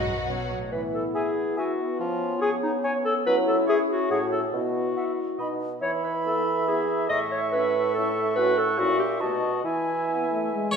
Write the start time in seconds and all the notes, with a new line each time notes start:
Already playing: B1 F#3 F#4 B4 D#5 F#5
0.07 F#2
0.28 B2 C#5
0.50 A2
0.72 E3 B3 E4 B4
0.94 A4
1.14 G#4 E5 G#5
1.57 F#4 E5 G#5
1.99 F3 C#4 F4
2.41 G#4 C#5 G#5
2.63 D#4
2.84 C#5 G#5
3.05 A4
3.25 F#3 C#4 E4 B4
3.47 A4
3.67 G#4 C#5 E5
3.90 F#4
4.10 A2 F#4 G#4 C#5 F#5
4.32 A4
4.53 B2 B3 E4 F#4
4.97 E5 F#5
5.38 B2 D#4 D#5 B5
5.81 E3 C#5 E5 B5
6.04 B4
6.25 B3 E4 A4
6.67 B3 E4 G#4
7.09 A2 D#5 C#6
7.31 C#5
7.52 C#4 E4 B4
7.94 C#4 E4 A4
8.36 C#4 F#4 B4 F#5
8.58 A4
8.78 A#2 C#4 E4 F#4 E5
8.99 G4
9.20 B2 A3 D#4 F#4 D#5 A5
9.64 E3 E4 E5 G#5
10.08 B3
10.29 A3
10.51 G#3
10.71 C#5